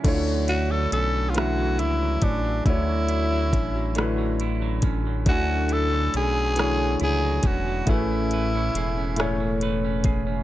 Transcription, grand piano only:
X:1
M:6/8
L:1/8
Q:3/8=46
K:Dlyd
V:1 name="Grand piano"
[D,A,E=F^Fc]2 z [E,A,EFe]2 z | [D,A,EFc]2 z [D,A,EFB]2 z | [D,A,EFg]2 z [E,A,EFc]2 z | [A,,A,CGB]2 z [A,,A,CGc]2 z |]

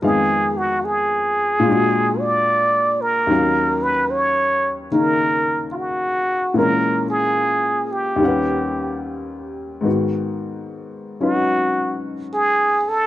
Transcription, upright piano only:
X:1
M:4/4
L:1/8
Q:"Swing" 1/4=73
K:Ebm
V:1 name="Upright piano"
[F,,E,A,Cf]4 [B,,A,=DFG]4 | [E,,E,G,Df]4 [D,E,B,E]4 | [B,,_F,A,DB]4 [E,,E,=G,D=B^f]4 | [K:G#m] [G,,D,B,F]3 [F,CDB]4- [F,CDB] |]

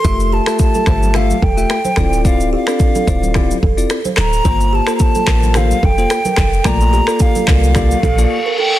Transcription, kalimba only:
X:1
M:4/4
L:1/16
Q:"Swing 16ths" 1/4=109
K:F
V:1 name="Kalimba"
z2 G A z A z2 G z A z2 c A z | z2 G A z A c z G z A z2 c A z | z2 G A z A z2 G z A z2 B A z | z2 G A z A B z G z A z2 B A z |]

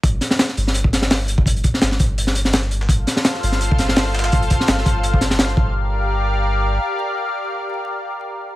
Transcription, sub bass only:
X:1
M:4/4
L:1/8
Q:1/4=168
K:Gm
V:1 name="Sub bass" clef=bass
G,,, z2 G,,,4- G,,, | G,,, z G,,, G,,,4- G,,, | G,,, z2 G,,,4- G,,, | G,,, z G,,, G,,,4 G,,,- |
G,,,6 z2 | z8 |]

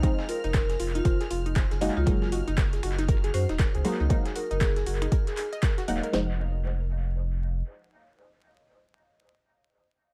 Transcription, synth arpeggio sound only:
X:1
M:4/4
L:1/16
Q:"Swing 16ths" 1/4=118
K:Fphr
V:1 name="Synth arpeggio sound"
c A F E c A F E c A F E c A G E | B A G E B A G E B A G E B A G E | B A G E B A G E B A A e B G g B | E2 z12 z2 |
z16 |]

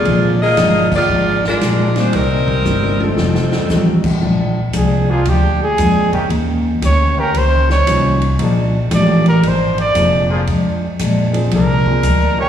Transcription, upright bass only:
X:1
M:4/4
L:1/8
Q:"Swing" 1/4=115
K:Bbmix
V:1 name="Upright bass" clef=bass
B,,,2 G,,,2 A,,,2 B,,,2 | C,,2 G,,,2 F,,, z =A,,,2 | B,,,2 C,,2 D,,2 F,,2 | E,,2 D,,2 _D,,2 C,,2 |
B,,,2 =A,,,2 _A,,,2 F,,,2 | F,,2 B,,,2 C,,2 D,, z |]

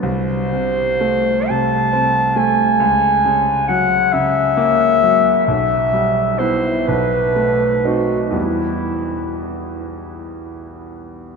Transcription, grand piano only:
X:1
M:6/8
L:1/8
Q:3/8=42
K:Em
V:1 name="Grand piano" clef=bass
C,, C, A, C, C A, | ^C,, ^C, F, C, ^A, F, | B,,, G, [B,E] B,,, A, [C^D] | [E,,G,B,E]6 |]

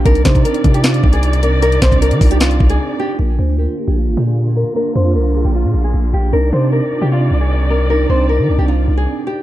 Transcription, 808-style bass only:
X:1
M:4/4
L:1/16
Q:1/4=153
K:Cm
V:1 name="808-style bass" clef=bass
C,,2 C,2 z2 C,4 C,,6- | C,,2 C,,3 E, C,,4 C,,2 z4 | B,,,2 D,,3 z2 B,,,2 A,,, B,,4- B,, z | z2 F,,2 C,,3 B,,,2 B,, B,,,2 B,,,2 B,,,2 |
C,,2 C,3 z2 C,3 C,,6- | C,,2 C,,3 E, C,, C,,3 C,,2 z4 |]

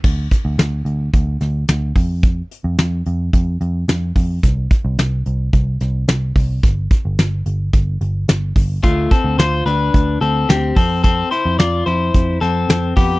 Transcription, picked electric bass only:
X:1
M:4/4
L:1/16
Q:1/4=109
K:Flyd
V:1 name="Picked electric bass" clef=bass
D,,2 z D,, D,,2 D,,2 D,,2 D,,2 D,,2 F,,2- | F,,2 z F,, F,,2 F,,2 F,,2 F,,2 F,,2 F,,2 | C,,2 z C,, C,,2 C,,2 C,,2 C,,2 C,,2 C,,2 | G,,,2 z G,,, G,,,2 G,,,2 G,,,2 G,,,2 G,,,2 G,,,2 |
D,,2 z D,, D,,2 D,,2 D,,2 D,,2 D,,2 F,,2- | F,,2 z F,, F,,2 F,,2 F,,2 F,,2 F,,2 F,,2 |]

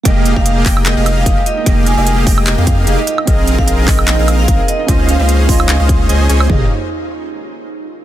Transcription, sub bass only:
X:1
M:4/4
L:1/16
Q:"Swing 16ths" 1/4=149
K:Fm
V:1 name="Sub bass" clef=bass
F,,,3 F,,,3 F,,,3 F,,,3 F,,, z3 | F,,,3 F,,,3 F,,,3 F,,3 F,,, z3 | B,,,3 B,,,3 B,,,3 B,,,3 B,,, z3 | D,,3 D,,3 D,,3 D,,3 D,,2 D,,2 |
F,,,2 z12 z2 |]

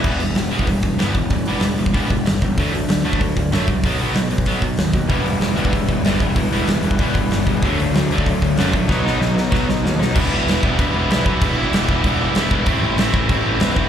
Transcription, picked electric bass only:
X:1
M:4/4
L:1/8
Q:1/4=190
K:Em
V:1 name="Picked electric bass" clef=bass
E,,, E,,, E,,, E,,, E,,, E,,, G,,, E,,, | E,,, E,,, E,,, E,,, E,,, E,,, G,,, E,,, | D,, D,, D,, D,, D,, D,, F,, C,, | B,,, B,,, B,,, B,,, B,,, B,,, ^D,, D,, |
E,,, E,,, E,,, E,,, E,,, E,,, G,,, E,,, | E,,, E,,, E,,, E,,, E,,, E,,, G,,, E,,, | D,, D,, D,, D,, D,, D,, F,, ^A,,, | B,,, B,,, B,,, B,,, B,,, B,,, ^D,, B,,, |
E,,, E,,, E,,, E,,, E,,, E,,, B,,, B,,, | E,,,2 E,,, E,,, E,,,2 E,,, E,,, | A,,, A,,, A,,, A,,, A,,, A,,, E,, E,,, |]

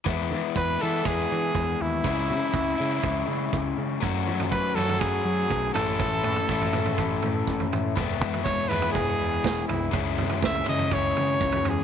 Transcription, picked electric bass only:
X:1
M:4/4
L:1/16
Q:1/4=122
K:E
V:1 name="Picked electric bass" clef=bass
E,,2 E, z E,,2 E,2 E,,2 E,2 E,,2 D,,2 | C,,2 C, z C,,2 C,2 C,,2 C,2 C,,2 C,2 | F,,2 F, z F,,2 F,2 F,,2 F,2 B,,,2 A,,,2 | A,,,2 A,, z A,,,2 A,,2 A,,,2 A,,2 A,,,2 A,,2 |
E,,,2 E,, z E,,,2 E,,2 E,,,2 E,,2 E,,,2 =C,,2 | C,,2 C, z C,,2 C,2 C,,2 C,2 C,,2 E,,2 |]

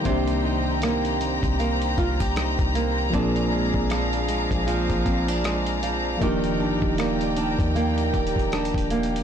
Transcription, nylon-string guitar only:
X:1
M:4/4
L:1/16
Q:"Swing 16ths" 1/4=78
K:Cm
V:1 name="Nylon-string guitar"
[C,B,EG]2 E2 B,2 E2 B,2 F G E2 B,2 | [B,,D]2 A,2 F,2 A,2 F,2 C D A,2 F,2 | [E,G]2 D2 B,2 D2 B,2 G2 D2 B,2 |]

